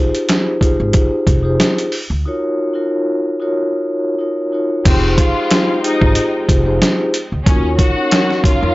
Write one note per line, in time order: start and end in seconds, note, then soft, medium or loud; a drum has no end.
0.00 0.54 D#4 medium
0.00 0.54 F4 medium
0.00 0.55 G4 medium
0.00 0.55 G#4 medium
0.00 0.55 C5 loud
0.15 closed hi-hat soft
0.29 snare loud
0.29 closed hi-hat loud
0.61 1.37 D#4 medium
0.61 1.37 F4 medium
0.61 1.38 G4 medium
0.61 1.38 G#4 medium
0.61 1.38 C5 loud
0.61 kick medium
0.61 closed hi-hat medium
0.80 0.93 G#1 medium
0.93 kick loud
0.93 closed hi-hat loud
1.27 1.56 F1 medium
1.27 kick medium
1.27 closed hi-hat medium
1.42 1.87 D#4 loud
1.42 1.88 F4 medium
1.42 1.88 G4 medium
1.42 1.88 G#4 medium
1.42 1.88 C5 loud
1.60 snare loud
1.60 closed hi-hat medium
1.78 closed hi-hat soft
1.92 open hi-hat medium
2.10 2.23 D2 medium
2.25 2.71 D#4 medium
2.25 2.72 F4 medium
2.25 2.72 F#4 medium
2.25 2.72 A#4 medium
2.25 2.73 C#5 loud
2.74 3.34 D#4 medium
2.74 3.34 F4 medium
2.74 3.34 F#4 medium
2.74 3.35 A#4 medium
2.74 3.35 C#5 loud
3.40 4.14 D#4 medium
3.40 4.14 F4 medium
3.40 4.15 F#4 medium
3.40 4.15 A#4 medium
3.40 4.15 C#5 loud
4.18 4.50 D#4 medium
4.18 4.50 F4 medium
4.18 4.50 F#4 medium
4.18 4.50 A#4 medium
4.18 4.51 C#5 medium
4.52 4.83 D#4 medium
4.52 4.83 F4 medium
4.52 4.83 F#4 medium
4.52 4.84 A#4 medium
4.52 4.84 C#5 medium
4.84 5.15 F1 loud
4.84 7.43 C4 medium
4.84 5.16 C4 loud
4.84 5.76 D#4 medium
4.84 5.76 F4 medium
4.84 5.77 G4 medium
4.84 5.77 G#4 medium
4.84 5.77 C5 loud
4.84 5.16 C5 medium
4.84 7.43 G5 medium
4.84 kick loud
4.84 closed hi-hat medium
4.84 crash loud
5.18 5.79 F4 medium
5.18 5.80 F5 medium
5.18 kick loud
5.18 closed hi-hat medium
5.51 snare loud
5.51 closed hi-hat loud
5.82 6.59 D#4 medium
5.82 6.31 D#4 medium
5.82 6.59 F4 medium
5.82 6.60 G4 medium
5.82 6.60 G#4 medium
5.82 6.60 C5 loud
5.82 6.32 D#5 medium
5.82 closed hi-hat medium
6.01 6.15 G#1 medium
6.01 kick loud
6.15 closed hi-hat loud
6.49 6.78 F1 medium
6.49 kick loud
6.49 closed hi-hat medium
6.64 7.09 D#4 loud
6.64 7.09 F4 medium
6.64 7.10 G4 medium
6.64 7.10 G#4 medium
6.64 7.10 C5 loud
6.82 snare loud
6.82 closed hi-hat loud
7.14 closed hi-hat medium
7.32 7.45 D2 medium
7.46 7.76 D#2 loud
7.46 8.75 D#3 medium
7.46 8.75 F#3 loud
7.46 8.75 A#3 medium
7.46 7.75 C#4 loud
7.46 8.75 C#4 medium
7.46 8.75 D#4 medium
7.46 7.93 D#4 medium
7.46 7.93 F4 medium
7.46 7.94 F#4 medium
7.46 7.94 A#4 medium
7.46 7.76 C#5 medium
7.46 7.94 C#5 loud
7.46 kick loud
7.46 closed hi-hat medium
7.79 8.40 F#4 medium
7.79 8.40 F#5 medium
7.79 kick medium
7.79 closed hi-hat medium
7.95 8.56 C#4 medium
7.95 8.56 D#4 medium
7.95 8.56 F#4 medium
7.95 8.56 A#4 medium
7.95 8.57 C#5 loud
8.11 snare loud
8.11 closed hi-hat loud
8.31 snare soft
8.44 8.75 F4 loud
8.44 8.75 F5 medium
8.44 kick medium
8.44 closed hi-hat medium
8.61 8.75 F2 medium
8.61 8.75 F#3 medium
8.61 8.75 D#4 medium
8.61 8.75 F4 medium
8.61 8.75 A#4 medium
8.61 8.75 C#5 loud